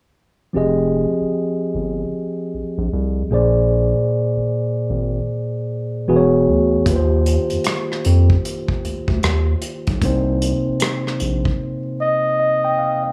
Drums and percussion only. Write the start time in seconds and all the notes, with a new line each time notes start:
6.86 kick, closed hi-hat
7.26 closed hi-hat
7.50 closed hi-hat
7.64 cross-stick, closed hi-hat
7.92 cross-stick
8.05 closed hi-hat
8.30 kick
8.45 closed hi-hat
8.68 kick
8.85 closed hi-hat
9.08 kick
9.23 cross-stick, closed hi-hat
9.62 closed hi-hat
9.87 kick, closed hi-hat
10.02 kick, closed hi-hat
10.42 closed hi-hat
10.80 cross-stick, closed hi-hat
11.07 cross-stick
11.20 closed hi-hat
11.45 kick